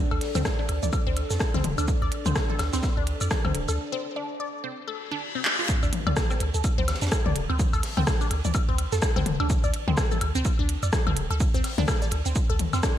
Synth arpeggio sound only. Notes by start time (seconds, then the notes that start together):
0.11 A4
0.35 C4
0.59 D4
0.83 D5
1.07 C4
1.30 A4
1.54 C4
1.78 D4
2.02 D5
2.26 C4
2.50 A4
2.73 C4
2.97 D4
3.21 D5
3.45 C4
3.69 A4
3.92 C4
4.16 D4
4.40 D5
4.64 C4
4.88 A4
5.11 D4
5.35 C4
5.59 F4
5.83 D4
6.07 D5
6.31 C4
6.54 A4
6.78 C4
7.02 D4
7.26 D5
7.50 C4
7.73 A4
7.97 C4
8.21 D4
8.45 D5
8.69 C4
8.92 A4
9.16 C4
9.40 D4
9.64 D5
9.88 C4
10.11 A4
10.35 C4
10.59 D4
10.83 D5
11.07 C4
11.30 A4
11.54 C4
11.78 D4
12.02 D5
12.26 C4
12.50 A4
12.73 C4
12.83 D4